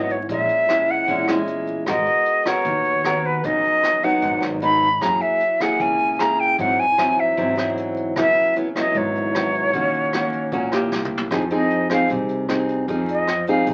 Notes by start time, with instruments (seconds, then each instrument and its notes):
Already playing: upright bass G#1, nylon-string guitar G#2 F#3 B3 E4, flute D#5
0.10 flute C#5, kick, closed hi-hat
0.29 upright bass A#1, nylon-string guitar A#2 G#3 C#4 E4, flute E5, kick, closed hi-hat
0.49 closed hi-hat
0.68 nylon-string guitar G#3 C#4 E4, cross-stick, closed hi-hat
0.88 flute F#5, kick, closed hi-hat
1.08 upright bass E2, nylon-string guitar A#2 G#3 C#4 E4, kick, closed hi-hat
1.28 nylon-string guitar G#3 C#4 E4, cross-stick, closed hi-hat
1.47 closed hi-hat
1.67 kick, closed hi-hat
1.86 upright bass G#1, nylon-string guitar G#3 B3 F#4 A#4, flute D#5, kick, cross-stick, closed hi-hat
2.06 closed hi-hat
2.26 closed hi-hat
2.45 nylon-string guitar B3 F#4 A#4, flute C#5, kick, cross-stick, closed hi-hat
2.65 upright bass D#2, nylon-string guitar D#3, kick, closed hi-hat
2.85 closed hi-hat
3.04 nylon-string guitar B3 F#4 A#4, cross-stick, closed hi-hat
3.24 flute B4, kick, closed hi-hat
3.44 upright bass C#2, nylon-string guitar C#3 F#3 B3 D#4, flute D#5, kick, closed hi-hat
3.64 closed hi-hat
3.83 cross-stick, closed hi-hat
4.03 nylon-string guitar F#3 B3 D#4, flute F#5, kick, closed hi-hat
4.22 upright bass G#1, nylon-string guitar G#2, kick, closed hi-hat
4.41 cross-stick, closed hi-hat
4.62 nylon-string guitar F#3 B3 D#4, flute B5, closed hi-hat
4.81 kick, closed hi-hat
5.01 upright bass F#2, nylon-string guitar F#3 A#3 E4 G#4, flute A#5, kick, cross-stick, closed hi-hat
5.21 flute E5, closed hi-hat
5.41 closed hi-hat
5.60 nylon-string guitar A#3 E4 G#4, flute F#5, kick, cross-stick, closed hi-hat
5.80 upright bass C#2, nylon-string guitar C#3, flute G#5, kick, closed hi-hat
5.99 closed hi-hat
6.19 nylon-string guitar A#3 E4 G#4, flute A#5, cross-stick, closed hi-hat
6.39 flute G5, kick, closed hi-hat
6.59 upright bass G#2, nylon-string guitar G#2 F#3 C4 E4, flute F#5, kick, closed hi-hat
6.79 flute G#5, closed hi-hat
6.98 nylon-string guitar F#3 C4 E4, cross-stick, closed hi-hat
7.18 flute E5, kick, closed hi-hat
7.37 upright bass E2, nylon-string guitar G#2 F#3 C4 E4, kick, closed hi-hat
7.57 nylon-string guitar F#3 C4 E4, cross-stick, closed hi-hat
7.77 closed hi-hat
7.96 kick, closed hi-hat
8.16 upright bass C#2, nylon-string guitar C#3 F#3 B3 E4, flute E5, kick, cross-stick, closed hi-hat
8.36 closed hi-hat
8.56 nylon-string guitar F#3 B3 E4, closed hi-hat
8.75 nylon-string guitar F#3 B3 E4, flute D#5, kick, cross-stick, closed hi-hat
8.95 upright bass G#1, nylon-string guitar G#2, flute C#5, kick, closed hi-hat
9.15 closed hi-hat
9.35 nylon-string guitar F#3 B3 E4, cross-stick, closed hi-hat
9.54 kick, closed hi-hat
9.73 upright bass D#2, nylon-string guitar D#3 A#3 C#4 F#4, kick, closed hi-hat
9.94 closed hi-hat
10.13 nylon-string guitar A#3 C#4 F#4, cross-stick, closed hi-hat
10.32 kick, closed hi-hat
10.52 upright bass C#2, nylon-string guitar A#2 A#3 C#4 F#4, kick, closed hi-hat
10.72 nylon-string guitar A#3 E4 G4, cross-stick, closed hi-hat
10.92 upright bass C2, snare
11.05 mid tom
11.18 floor tom
11.31 upright bass F2, nylon-string guitar F3 C4 D#4 G#4, kick, cross-stick, closed hi-hat
11.50 nylon-string guitar C4 D#4 G#4, flute D#5, closed hi-hat
11.70 closed hi-hat
11.90 nylon-string guitar C4 D#4 G#4, flute F5, cross-stick, closed hi-hat
12.09 upright bass C2, nylon-string guitar C3, kick, closed hi-hat
12.29 closed hi-hat
12.48 nylon-string guitar C4 D#4 G#4, cross-stick, closed hi-hat
12.69 closed hi-hat
12.88 upright bass F2, nylon-string guitar F3 C4 D#4 G#4, kick, closed hi-hat
13.08 flute D#5, closed hi-hat
13.27 cross-stick, closed hi-hat
13.47 nylon-string guitar C4 D#4 G#4, flute F5, closed hi-hat
13.67 upright bass C2, nylon-string guitar C3, kick, closed hi-hat